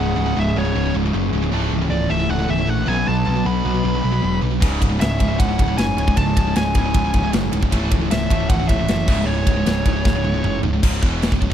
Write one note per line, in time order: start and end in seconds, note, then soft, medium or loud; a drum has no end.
0.00 0.14 C#1 loud
0.00 0.15 C#2 medium
0.00 0.15 G#2 medium
0.00 0.55 C#3 loud
0.00 1.49 E3 medium
0.00 2.84 C#4 medium
0.00 1.49 G#4 medium
0.00 0.38 F#5 loud
0.16 0.32 C#1 loud
0.16 0.26 C#2 medium
0.16 0.25 G#2 medium
0.26 0.35 C#2 medium
0.26 0.36 G#2 medium
0.37 0.52 C#1 loud
0.37 0.54 C#2 medium
0.37 0.54 G#2 loud
0.37 0.58 E5 medium
0.55 0.71 C#1 medium
0.55 0.64 C#2 medium
0.55 0.63 G#2 medium
0.55 1.51 C#3 medium
0.55 0.93 C#5 medium
0.65 0.74 C#2 medium
0.65 0.75 G#2 medium
0.75 0.91 C#1 loud
0.75 0.85 C#2 medium
0.75 0.84 G#2 medium
0.85 0.94 C#2 medium
0.85 0.93 G#2 medium
0.94 1.10 C#1 loud
0.94 1.04 C#2 medium
0.94 1.04 G#2 medium
1.05 1.13 C#2 medium
1.05 1.13 G#2 medium
1.14 1.29 F#1 medium
1.14 1.31 C#2 medium
1.14 1.31 G#2 loud
1.33 1.49 C#1 medium
1.33 1.42 C#2 medium
1.33 1.42 G#2 medium
1.43 1.52 C#2 medium
1.43 1.52 G#2 medium
1.52 1.68 C#1 loud
1.52 1.71 A2 medium
1.52 1.71 E3 medium
1.52 2.87 E3 medium
1.52 1.71 A3 loud
1.52 2.88 A4 medium
1.71 1.87 C#1 loud
1.71 1.81 A2 medium
1.71 1.80 E3 medium
1.81 1.90 A2 medium
1.81 1.90 E3 medium
1.90 2.06 C#1 loud
1.90 2.08 A2 medium
1.90 2.09 E3 medium
1.90 2.10 D5 medium
2.09 2.25 C#1 loud
2.09 2.19 A2 medium
2.09 2.18 E3 loud
2.09 2.86 A3 medium
2.09 2.30 E5 medium
2.20 2.28 A2 medium
2.20 2.29 E3 medium
2.29 2.45 C#1 loud
2.29 2.38 A2 medium
2.29 2.38 E3 loud
2.29 2.50 F#5 medium
2.39 2.47 A2 medium
2.39 2.47 E3 medium
2.48 2.64 C#1 loud
2.48 2.58 A2 medium
2.48 2.57 E3 loud
2.48 2.69 E5 medium
2.58 2.66 A2 medium
2.58 2.66 E3 medium
2.67 2.83 A#1 medium
2.67 2.85 A2 loud
2.67 2.85 E3 loud
2.67 2.88 F#5 loud
2.87 3.03 B1 medium
2.87 2.96 B2 medium
2.87 2.96 F#3 loud
2.87 4.61 F#3 medium
2.87 2.96 B3 loud
2.87 4.61 D4 medium
2.87 4.61 B4 medium
2.87 3.08 G#5 loud
2.97 3.05 B2 medium
2.97 3.06 F#3 medium
3.06 3.23 B1 loud
3.06 3.24 B2 medium
3.06 3.25 F#3 medium
3.06 3.48 A5 loud
3.26 3.42 B1 loud
3.26 3.35 B2 medium
3.26 3.34 F#3 medium
3.35 3.44 B2 medium
3.35 3.44 F#3 medium
3.45 3.61 B1 medium
3.45 3.63 B2 medium
3.45 3.63 F#3 loud
3.45 4.42 B3 medium
3.45 4.39 B5 loud
3.65 3.81 B1 medium
3.65 3.73 B2 medium
3.65 3.72 F#3 medium
3.74 3.82 B2 medium
3.74 3.83 F#3 medium
3.84 4.00 B1 loud
3.84 3.93 B2 medium
3.84 3.93 F#3 loud
3.94 4.02 B2 medium
3.94 4.02 F#3 medium
4.03 4.20 B1 medium
4.03 4.11 B2 medium
4.03 4.11 F#3 medium
4.12 4.20 B2 medium
4.12 4.21 F#3 medium
4.22 4.39 E1 medium
4.22 4.40 B2 medium
4.22 4.40 F#3 medium
4.41 4.58 B1 medium
4.41 4.50 B2 medium
4.41 4.49 F#3 medium
4.50 4.60 B2 medium
4.50 4.60 F#3 medium
4.60 4.78 C#1 loud
4.60 4.79 C#2 medium
4.60 4.79 G#2 loud
4.60 4.80 C#3 medium
4.60 7.69 G#3 medium
4.60 10.79 E4 medium
4.60 7.70 C#5 medium
4.60 kick loud
4.60 crash loud
4.80 4.97 C#1 medium
4.80 4.88 C#2 medium
4.80 4.88 G#2 medium
4.80 kick medium
4.80 ride medium
4.89 4.98 C#2 medium
4.89 4.98 G#2 medium
4.99 5.17 C#1 loud
4.99 5.17 C#2 medium
4.99 5.17 G#2 medium
4.99 5.41 E5 medium
4.99 snare loud
4.99 ride loud
5.18 5.36 C#1 loud
5.18 5.28 C#2 medium
5.18 5.27 G#2 medium
5.18 6.18 C#3 medium
5.18 kick medium
5.18 ride medium
5.28 5.37 C#2 medium
5.28 5.37 G#2 medium
5.38 5.55 C#1 medium
5.38 5.47 C#2 medium
5.38 5.47 G#2 medium
5.38 5.76 F#5 medium
5.38 kick loud
5.38 ride loud
5.48 5.57 C#2 medium
5.48 5.57 G#2 medium
5.58 5.75 C#1 medium
5.58 5.67 C#2 medium
5.58 5.66 G#2 medium
5.58 kick medium
5.58 ride medium
5.68 5.76 C#2 medium
5.68 5.76 G#2 medium
5.77 5.94 F#1 medium
5.77 5.95 C#2 medium
5.77 5.96 G#2 loud
5.77 6.17 G#5 loud
5.77 snare loud
5.77 ride loud
5.97 6.13 C#1 loud
5.97 6.06 C#2 medium
5.97 6.06 G#2 medium
5.97 ride medium
6.07 6.16 C#2 medium
6.07 6.16 G#2 medium
6.07 kick loud
6.17 6.33 C#1 loud
6.17 6.35 C#2 medium
6.17 6.35 G#2 medium
6.17 6.75 C#3 loud
6.17 6.56 A5 loud
6.17 kick loud
6.17 ride loud
6.36 6.52 C#1 loud
6.36 6.45 C#2 medium
6.36 6.45 G#2 medium
6.36 kick medium
6.36 ride medium
6.46 6.55 C#2 medium
6.46 6.55 G#2 medium
6.55 6.71 C#1 loud
6.55 6.73 C#2 medium
6.55 6.74 G#2 medium
6.55 7.30 G#5 loud
6.55 snare loud
6.55 ride loud
6.75 6.91 C#1 medium
6.75 6.84 C#2 medium
6.75 6.84 G#2 medium
6.75 7.73 C#3 loud
6.75 kick medium
6.75 ride medium
6.85 6.94 C#2 medium
6.85 6.94 G#2 medium
6.94 7.10 C#1 loud
6.94 7.04 C#2 medium
6.94 7.03 G#2 medium
6.94 kick loud
6.94 ride loud
7.05 7.14 C#2 medium
7.05 7.13 G#2 medium
7.14 7.30 C#1 loud
7.14 7.23 C#2 medium
7.14 7.22 G#2 medium
7.14 kick medium
7.14 ride medium
7.23 7.31 C#2 medium
7.23 7.32 G#2 medium
7.33 7.49 F#1 loud
7.33 7.51 C#2 medium
7.33 7.51 G#2 loud
7.33 snare loud
7.33 ride loud
7.52 7.68 C#1 medium
7.52 7.61 C#2 medium
7.52 7.60 G#2 medium
7.52 ride medium
7.61 7.71 C#2 medium
7.61 7.72 G#2 medium
7.61 kick loud
7.71 7.88 C#1 loud
7.71 7.90 A2 medium
7.71 7.90 E3 medium
7.71 9.07 A3 medium
7.71 7.91 A3 loud
7.71 10.79 C#5 medium
7.71 kick loud
7.71 ride loud
7.91 8.07 C#1 loud
7.91 8.00 A2 medium
7.91 8.00 E3 medium
7.91 kick medium
7.91 ride medium
8.01 8.09 A2 medium
8.01 8.10 E3 loud
8.10 8.26 C#1 medium
8.10 8.28 A2 medium
8.10 8.29 E3 medium
8.10 8.47 E5 loud
8.10 snare loud
8.10 ride loud
8.30 8.46 C#1 loud
8.30 8.40 A2 medium
8.30 8.39 E3 medium
8.30 9.07 A3 loud
8.30 kick medium
8.30 ride medium
8.40 8.49 A2 medium
8.40 8.50 E3 medium
8.50 8.65 C#1 loud
8.50 8.59 A2 medium
8.50 8.58 E3 medium
8.50 8.68 F#5 loud
8.50 kick loud
8.50 ride loud
8.60 8.69 A2 medium
8.60 8.68 E3 medium
8.68 8.85 C#1 loud
8.68 8.79 A2 medium
8.68 8.78 E3 medium
8.68 9.29 E5 loud
8.68 kick medium
8.68 ride medium
8.80 8.89 A2 medium
8.80 8.89 E3 medium
8.88 9.04 F#1 medium
8.88 9.07 A2 medium
8.88 9.07 E3 medium
8.88 snare loud
8.88 ride loud
9.08 9.24 C#1 loud
9.08 9.17 C#2 medium
9.08 9.16 G#2 loud
9.08 9.17 C#3 loud
9.08 10.80 G#3 medium
9.08 kick loud
9.08 crash loud
9.17 9.26 C#2 medium
9.17 9.26 G#2 medium
9.26 9.43 C#1 loud
9.26 9.45 C#2 medium
9.26 9.45 G#2 medium
9.26 10.59 C#5 loud
9.47 9.62 C#1 loud
9.47 9.56 C#2 medium
9.47 9.55 G#2 medium
9.47 kick loud
9.47 ride medium
9.57 9.65 C#2 medium
9.57 9.66 G#2 medium
9.66 9.82 C#1 loud
9.66 9.84 C#2 medium
9.66 9.84 G#2 medium
9.66 10.63 C#3 medium
9.66 snare loud
9.66 ride loud
9.85 10.01 C#1 medium
9.85 9.96 C#2 medium
9.85 9.95 G#2 medium
9.85 kick medium
9.85 ride medium
9.96 10.04 C#2 medium
9.96 10.04 G#2 medium
10.05 10.21 C#1 loud
10.05 10.15 C#2 medium
10.05 10.14 G#2 medium
10.05 kick loud
10.05 snare medium
10.15 10.24 C#2 medium
10.15 10.23 G#2 medium
10.24 10.40 C#1 medium
10.24 10.33 C#2 medium
10.24 10.33 G#2 medium
10.24 high tom medium
10.34 10.43 C#2 medium
10.34 10.44 G#2 medium
10.44 10.59 F#1 medium
10.44 10.62 C#2 medium
10.44 10.62 G#2 medium
10.44 mid tom loud
10.63 10.79 C#1 loud
10.63 10.72 C#2 medium
10.63 10.72 G#2 medium
10.63 floor tom loud
10.73 10.81 C#2 medium
10.73 10.82 G#2 medium
10.82 11.01 C#1 loud
10.82 11.01 C#2 medium
10.82 11.01 G#2 loud
10.82 11.02 C#3 loud
10.82 11.54 G#3 medium
10.82 11.54 E4 medium
10.82 11.54 C#5 medium
10.82 kick loud
10.82 crash loud
10.82 crash medium
11.01 11.30 E1 medium
11.01 11.30 E2 medium
11.01 11.30 B2 medium
11.01 11.31 E3 loud
11.01 kick loud
11.22 snare loud
11.22 crash medium
11.30 11.41 C#1 medium
11.30 11.39 C#2 medium
11.30 11.39 G#2 medium
11.30 kick medium
11.40 11.50 C#1 medium
11.40 11.49 C#2 medium
11.40 11.49 G#2 medium
11.40 kick medium
11.50 11.54 C#2 medium
11.50 11.54 G#2 medium